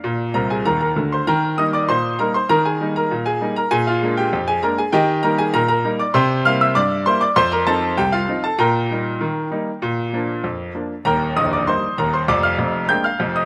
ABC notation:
X:1
M:2/4
L:1/16
Q:1/4=98
K:Eb
V:1 name="Grand piano"
[Bdf]2 [Bb] [Aa] [Bb] [Bb]2 [cc'] | [Bgb]2 [ee'] [dd'] [cc']2 [Bb] [cc'] | [Bb] [Aa]2 [Bb]2 [Aa]2 [Bb] | [Aa] [Ff]2 [Gg]2 [Aa] [Bb] [Aa] |
[Geg]2 [Bb] [Aa] [Bb] [Bb]2 [dd'] | [cgc']2 [ff'] [=e=e'] [dd']2 [cc'] [dd'] | [cc'] [Bb] [=A=a]2 [Gg] [Ff]2 [Aa] | [Bgb]8- |
[Bgb]6 z2 | [Bgb]2 [ee'] [dd'] [cc']2 [Bb] [cc'] | [dd'] [ff']3 [gg'] [ff']2 [ee'] |]
V:2 name="Grand piano" clef=bass
B,,2 [C,,C,]2 [E,,E,]2 [D,,D,]2 | E,2 [G,B,E]2 B,,2 [G,B,E]2 | E,2 [G,B,E]2 B,,2 [G,B,E]2 | B,,2 [A,B,D]2 F,,2 [A,B,D]2 |
E,2 [G,B,E]2 B,,2 [G,B,E]2 | C,2 [G,B,=E]2 G,,2 [G,B,E]2 | F,,2 [F,CE]2 C,,2 [F,CE]2 | B,,2 [G,B,E]2 E,2 [G,B,E]2 |
B,,2 [F,B,D]2 F,,2 [F,B,D]2 | [E,,,E,,]2 [B,,,,B,,,]2 [G,B,E]2 [E,,,E,,]2 | [F,,,F,,]2 [F,,,F,,]2 [A,B,D]2 [F,,,F,,]2 |]